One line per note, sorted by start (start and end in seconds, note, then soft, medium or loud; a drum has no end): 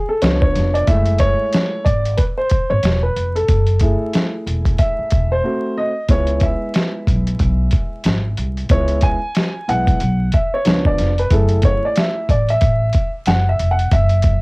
0.00 0.10 G#4 medium
0.09 0.22 A4 medium
0.22 0.49 C#2 medium
0.22 0.84 F3 medium
0.22 0.84 B3 soft
0.22 0.85 D4 medium
0.22 0.40 C#5 medium
0.22 snare loud
0.22 closed hi-hat medium
0.42 0.75 C#5 medium
0.42 kick medium
0.55 0.82 F1 medium
0.55 snare soft
0.55 closed hi-hat medium
0.74 0.86 D5 loud
0.74 closed hi-hat soft
0.87 1.31 F#1 medium
0.87 1.81 G#3 medium
0.87 1.81 A3 medium
0.87 1.82 E4 medium
0.87 1.21 E5 loud
0.87 kick loud
0.87 closed hi-hat medium
1.05 closed hi-hat soft
1.18 1.87 C#5 loud
1.18 kick medium
1.18 closed hi-hat medium
1.52 snare loud
1.52 closed hi-hat medium
1.85 2.13 G#1 medium
1.85 2.18 D5 medium
1.85 kick medium
1.85 closed hi-hat medium
2.05 closed hi-hat medium
2.17 2.22 B4 medium
2.17 kick medium
2.17 closed hi-hat medium
2.38 2.71 C5 medium
2.50 kick medium
2.50 closed hi-hat medium
2.70 2.81 G#1 medium
2.70 3.00 C#5 medium
2.83 3.10 E1 medium
2.83 snare loud
2.83 closed hi-hat medium
3.03 3.36 B4 medium
3.16 3.43 F1 medium
3.16 closed hi-hat medium
3.35 4.29 A4 medium
3.35 closed hi-hat medium
3.48 3.92 F#1 medium
3.48 kick loud
3.48 closed hi-hat medium
3.66 closed hi-hat soft
3.79 5.40 A3 soft
3.79 5.40 E4 medium
3.79 5.40 G#4 medium
3.79 kick medium
3.79 closed hi-hat medium
4.13 snare loud
4.13 closed hi-hat medium
4.46 4.73 E1 medium
4.46 closed hi-hat medium
4.66 kick medium
4.66 closed hi-hat soft
4.79 5.33 E5 medium
4.79 kick medium
4.79 closed hi-hat medium
4.99 muted upright bass stroke soft
5.11 5.39 E1 medium
5.11 kick medium
5.11 closed hi-hat medium
5.32 5.78 C5 medium
5.43 5.90 A3 medium
5.43 5.90 C4 soft
5.43 5.90 F#4 medium
5.78 6.11 D#5 medium
6.09 6.53 C#2 medium
6.09 8.66 G#3 soft
6.09 8.66 B3 soft
6.09 8.66 E4 medium
6.09 6.44 C#5 medium
6.09 kick loud
6.09 closed hi-hat medium
6.27 closed hi-hat soft
6.40 8.01 E5 medium
6.40 kick medium
6.40 closed hi-hat medium
6.74 snare loud
6.74 closed hi-hat medium
7.07 7.34 B1 medium
7.07 kick medium
7.07 closed hi-hat medium
7.27 closed hi-hat medium
7.39 7.67 B1 loud
7.39 kick medium
7.39 closed hi-hat medium
7.71 kick medium
7.71 closed hi-hat medium
8.04 8.32 G#1 medium
8.04 snare loud
8.04 closed hi-hat medium
8.37 8.65 C2 medium
8.37 closed hi-hat medium
8.57 closed hi-hat medium
8.69 9.13 C#2 medium
8.69 9.16 G#3 medium
8.69 9.16 B3 soft
8.69 9.16 E4 medium
8.69 9.04 C#5 medium
8.69 kick loud
8.69 closed hi-hat medium
8.88 closed hi-hat soft
9.01 9.70 G#5 loud
9.01 kick medium
9.01 closed hi-hat medium
9.35 snare loud
9.35 closed hi-hat medium
9.68 9.95 B1 medium
9.68 9.97 G#3 soft
9.68 9.97 B3 soft
9.68 9.97 E4 medium
9.68 10.35 F#5 loud
9.68 closed hi-hat medium
9.87 kick medium
9.87 closed hi-hat medium
10.00 10.28 B1 medium
10.00 closed hi-hat medium
10.32 10.54 E5 medium
10.32 kick medium
10.32 closed hi-hat medium
10.54 10.84 C#5 medium
10.65 10.93 C#2 loud
10.65 11.11 F3 medium
10.65 11.12 B3 soft
10.65 11.12 D4 medium
10.65 snare loud
10.65 closed hi-hat medium
10.85 11.19 D5 medium
10.85 kick medium
10.98 11.26 F1 medium
10.98 snare soft
10.98 closed hi-hat medium
11.18 11.32 B4 medium
11.18 closed hi-hat medium
11.30 11.74 F#1 loud
11.30 12.25 A3 soft
11.30 12.25 E4 medium
11.30 12.24 G#4 medium
11.30 11.65 A4 medium
11.30 kick loud
11.30 closed hi-hat medium
11.49 closed hi-hat medium
11.62 11.84 C#5 medium
11.62 kick medium
11.62 closed hi-hat medium
11.85 11.97 D5 medium
11.96 12.28 E5 medium
11.96 snare loud
11.96 closed hi-hat medium
12.29 12.56 A1 medium
12.29 12.50 D5 medium
12.29 kick medium
12.29 closed hi-hat medium
12.49 13.10 E5 loud
12.49 closed hi-hat medium
12.61 12.89 A1 medium
12.61 kick medium
12.61 closed hi-hat medium
12.93 kick medium
12.93 closed hi-hat medium
13.26 13.54 F#1 medium
13.26 13.49 F#5 medium
13.26 snare loud
13.26 closed hi-hat medium
13.49 13.71 E5 medium
13.59 13.87 F1 medium
13.59 closed hi-hat medium
13.71 13.93 F#5 medium
13.79 closed hi-hat medium
13.91 14.35 F#1 loud
13.91 14.42 E5 medium
13.91 kick loud
13.91 closed hi-hat loud
14.09 closed hi-hat medium
14.22 kick loud
14.22 closed hi-hat medium